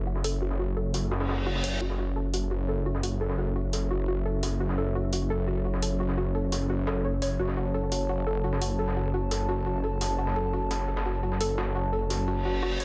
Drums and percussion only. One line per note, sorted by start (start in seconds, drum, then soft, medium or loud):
0.07 closed hi-hat medium
0.16 snare soft
0.24 closed hi-hat medium
0.24 open hi-hat medium
0.42 closed hi-hat medium
0.50 snare medium
0.59 closed hi-hat medium
0.77 closed hi-hat medium
0.94 snare soft
0.94 closed hi-hat medium
0.94 open hi-hat medium
1.12 snare loud
1.12 closed hi-hat medium
1.20 snare loud
1.20 closed hi-hat medium
1.29 snare loud
1.29 closed hi-hat medium
1.55 snare soft
1.64 open hi-hat medium
1.81 closed hi-hat medium
1.90 snare medium
1.99 closed hi-hat medium
2.16 closed hi-hat medium
2.34 closed hi-hat medium
2.34 open hi-hat medium
2.51 closed hi-hat medium
2.68 closed hi-hat medium
2.86 closed hi-hat medium
2.95 snare medium
3.03 closed hi-hat medium
3.03 open hi-hat medium
3.21 closed hi-hat medium
3.30 snare medium
3.38 closed hi-hat medium
3.56 closed hi-hat medium
3.73 snare soft
3.73 closed hi-hat medium
3.73 open hi-hat medium
3.91 closed hi-hat medium
4.08 closed hi-hat medium
4.25 closed hi-hat medium
4.43 snare medium
4.43 open hi-hat medium
4.60 closed hi-hat medium
4.69 snare medium
4.78 closed hi-hat medium
4.95 closed hi-hat medium
5.13 closed hi-hat medium
5.13 open hi-hat medium
5.30 closed hi-hat medium
5.48 closed hi-hat medium
5.65 closed hi-hat medium
5.74 snare medium
5.82 closed hi-hat medium
5.82 open hi-hat medium
6.00 closed hi-hat medium
6.09 snare medium
6.17 closed hi-hat medium
6.35 closed hi-hat medium
6.52 snare soft
6.52 closed hi-hat medium
6.52 open hi-hat medium
6.70 closed hi-hat medium
6.87 snare loud
6.87 closed hi-hat medium
7.05 closed hi-hat medium
7.22 snare medium
7.22 open hi-hat medium
7.39 closed hi-hat medium
7.48 snare medium
7.57 closed hi-hat medium
7.74 closed hi-hat medium
7.92 closed hi-hat medium
7.92 open hi-hat medium
8.09 closed hi-hat medium
8.27 closed hi-hat medium
8.44 closed hi-hat medium
8.53 snare medium
8.62 closed hi-hat medium
8.62 open hi-hat medium
8.79 closed hi-hat medium
8.88 snare medium
8.96 closed hi-hat medium
9.14 closed hi-hat medium
9.31 snare soft
9.31 closed hi-hat medium
9.31 open hi-hat medium
9.49 closed hi-hat medium
9.66 closed hi-hat medium
9.84 closed hi-hat medium
10.01 snare medium
10.01 closed hi-hat medium
10.01 open hi-hat medium
10.18 closed hi-hat medium
10.27 snare medium
10.36 closed hi-hat medium
10.53 closed hi-hat medium
10.71 snare loud
10.71 closed hi-hat medium
10.71 open hi-hat medium
10.80 snare soft
10.88 closed hi-hat medium
10.97 snare loud
10.97 closed hi-hat medium
11.06 snare soft
11.14 closed hi-hat medium
11.23 closed hi-hat medium
11.32 snare soft
11.41 closed hi-hat medium
11.41 open hi-hat medium
11.49 closed hi-hat medium
11.58 snare loud
11.58 closed hi-hat medium
11.75 closed hi-hat medium
11.93 closed hi-hat medium
12.10 snare soft
12.10 closed hi-hat medium
12.10 open hi-hat medium
12.28 closed hi-hat medium
12.45 closed hi-hat medium
12.63 closed hi-hat medium
12.80 snare medium
12.80 open hi-hat medium